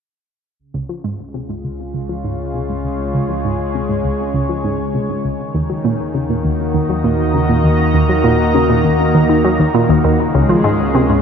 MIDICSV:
0, 0, Header, 1, 4, 480
1, 0, Start_track
1, 0, Key_signature, -5, "major"
1, 0, Tempo, 600000
1, 475, Time_signature, 4, 2, 24, 8
1, 8974, End_track
2, 0, Start_track
2, 0, Title_t, "Analog synth pad"
2, 0, Program_c, 0, 89
2, 475, Note_on_c, 0, 49, 67
2, 847, Note_on_c, 0, 56, 84
2, 972, Note_on_c, 0, 65, 87
2, 1459, Note_on_c, 0, 73, 79
2, 1837, Note_on_c, 0, 80, 67
2, 4313, Note_on_c, 0, 51, 88
2, 4315, Note_off_c, 0, 49, 0
2, 4315, Note_off_c, 0, 56, 0
2, 4316, Note_off_c, 0, 65, 0
2, 4676, Note_on_c, 0, 58, 78
2, 4963, Note_on_c, 0, 66, 82
2, 5103, Note_on_c, 0, 75, 66
2, 5291, Note_on_c, 0, 82, 83
2, 5850, Note_off_c, 0, 80, 0
2, 5852, Note_off_c, 0, 73, 0
2, 8154, Note_off_c, 0, 51, 0
2, 8154, Note_off_c, 0, 66, 0
2, 8156, Note_on_c, 0, 49, 71
2, 8225, Note_on_c, 0, 56, 74
2, 8547, Note_on_c, 0, 65, 68
2, 8578, Note_on_c, 0, 73, 80
2, 8974, Note_off_c, 0, 49, 0
2, 8974, Note_off_c, 0, 56, 0
2, 8974, Note_off_c, 0, 58, 0
2, 8974, Note_off_c, 0, 65, 0
2, 8974, Note_off_c, 0, 73, 0
2, 8974, Note_off_c, 0, 75, 0
2, 8974, Note_off_c, 0, 82, 0
2, 8974, End_track
3, 0, Start_track
3, 0, Title_t, "Synth arpeggio sound"
3, 0, Program_c, 1, 84
3, 594, Note_on_c, 1, 37, 92
3, 665, Note_off_c, 1, 37, 0
3, 714, Note_on_c, 1, 53, 73
3, 785, Note_off_c, 1, 53, 0
3, 834, Note_on_c, 1, 44, 94
3, 905, Note_off_c, 1, 44, 0
3, 1074, Note_on_c, 1, 48, 73
3, 1117, Note_off_c, 1, 48, 0
3, 1194, Note_on_c, 1, 44, 70
3, 1237, Note_off_c, 1, 44, 0
3, 1314, Note_on_c, 1, 37, 70
3, 1357, Note_off_c, 1, 37, 0
3, 1553, Note_on_c, 1, 37, 88
3, 1625, Note_off_c, 1, 37, 0
3, 1674, Note_on_c, 1, 53, 72
3, 1745, Note_off_c, 1, 53, 0
3, 1795, Note_on_c, 1, 44, 84
3, 1866, Note_off_c, 1, 44, 0
3, 2036, Note_on_c, 1, 48, 64
3, 2078, Note_off_c, 1, 48, 0
3, 2156, Note_on_c, 1, 44, 69
3, 2198, Note_off_c, 1, 44, 0
3, 2275, Note_on_c, 1, 37, 67
3, 2317, Note_off_c, 1, 37, 0
3, 2513, Note_on_c, 1, 37, 97
3, 2585, Note_off_c, 1, 37, 0
3, 2634, Note_on_c, 1, 53, 71
3, 2705, Note_off_c, 1, 53, 0
3, 2756, Note_on_c, 1, 44, 93
3, 2826, Note_off_c, 1, 44, 0
3, 2998, Note_on_c, 1, 48, 72
3, 3039, Note_off_c, 1, 48, 0
3, 3115, Note_on_c, 1, 44, 71
3, 3157, Note_off_c, 1, 44, 0
3, 3234, Note_on_c, 1, 37, 71
3, 3277, Note_off_c, 1, 37, 0
3, 3472, Note_on_c, 1, 37, 95
3, 3544, Note_off_c, 1, 37, 0
3, 3593, Note_on_c, 1, 53, 67
3, 3665, Note_off_c, 1, 53, 0
3, 3715, Note_on_c, 1, 44, 89
3, 3786, Note_off_c, 1, 44, 0
3, 3956, Note_on_c, 1, 48, 65
3, 3998, Note_off_c, 1, 48, 0
3, 4076, Note_on_c, 1, 44, 72
3, 4118, Note_off_c, 1, 44, 0
3, 4196, Note_on_c, 1, 37, 68
3, 4238, Note_off_c, 1, 37, 0
3, 4437, Note_on_c, 1, 39, 93
3, 4506, Note_off_c, 1, 39, 0
3, 4556, Note_on_c, 1, 54, 75
3, 4626, Note_off_c, 1, 54, 0
3, 4677, Note_on_c, 1, 46, 94
3, 4747, Note_off_c, 1, 46, 0
3, 4915, Note_on_c, 1, 49, 69
3, 4957, Note_off_c, 1, 49, 0
3, 5037, Note_on_c, 1, 46, 73
3, 5079, Note_off_c, 1, 46, 0
3, 5155, Note_on_c, 1, 39, 71
3, 5198, Note_off_c, 1, 39, 0
3, 5395, Note_on_c, 1, 39, 89
3, 5466, Note_off_c, 1, 39, 0
3, 5516, Note_on_c, 1, 54, 73
3, 5586, Note_off_c, 1, 54, 0
3, 5634, Note_on_c, 1, 46, 91
3, 5705, Note_off_c, 1, 46, 0
3, 5874, Note_on_c, 1, 49, 70
3, 5917, Note_off_c, 1, 49, 0
3, 5993, Note_on_c, 1, 46, 70
3, 6036, Note_off_c, 1, 46, 0
3, 6114, Note_on_c, 1, 39, 67
3, 6157, Note_off_c, 1, 39, 0
3, 6352, Note_on_c, 1, 39, 94
3, 6424, Note_off_c, 1, 39, 0
3, 6475, Note_on_c, 1, 54, 75
3, 6546, Note_off_c, 1, 54, 0
3, 6592, Note_on_c, 1, 46, 99
3, 6664, Note_off_c, 1, 46, 0
3, 6836, Note_on_c, 1, 49, 72
3, 6878, Note_off_c, 1, 49, 0
3, 6957, Note_on_c, 1, 46, 72
3, 6998, Note_off_c, 1, 46, 0
3, 7076, Note_on_c, 1, 39, 74
3, 7118, Note_off_c, 1, 39, 0
3, 7318, Note_on_c, 1, 39, 91
3, 7387, Note_off_c, 1, 39, 0
3, 7435, Note_on_c, 1, 51, 72
3, 7506, Note_off_c, 1, 51, 0
3, 7556, Note_on_c, 1, 54, 70
3, 7662, Note_off_c, 1, 54, 0
3, 7675, Note_on_c, 1, 39, 75
3, 7746, Note_off_c, 1, 39, 0
3, 7796, Note_on_c, 1, 46, 91
3, 7866, Note_off_c, 1, 46, 0
3, 7914, Note_on_c, 1, 39, 94
3, 7957, Note_off_c, 1, 39, 0
3, 8035, Note_on_c, 1, 39, 88
3, 8141, Note_off_c, 1, 39, 0
3, 8275, Note_on_c, 1, 37, 97
3, 8346, Note_off_c, 1, 37, 0
3, 8395, Note_on_c, 1, 53, 73
3, 8466, Note_off_c, 1, 53, 0
3, 8513, Note_on_c, 1, 44, 96
3, 8585, Note_off_c, 1, 44, 0
3, 8757, Note_on_c, 1, 48, 70
3, 8798, Note_off_c, 1, 48, 0
3, 8876, Note_on_c, 1, 44, 66
3, 8918, Note_off_c, 1, 44, 0
3, 8974, End_track
4, 0, Start_track
4, 0, Title_t, "Analog synth bass"
4, 0, Program_c, 2, 38
4, 475, Note_on_c, 2, 37, 82
4, 4291, Note_off_c, 2, 37, 0
4, 4315, Note_on_c, 2, 39, 86
4, 8131, Note_off_c, 2, 39, 0
4, 8156, Note_on_c, 2, 37, 80
4, 8974, Note_off_c, 2, 37, 0
4, 8974, End_track
0, 0, End_of_file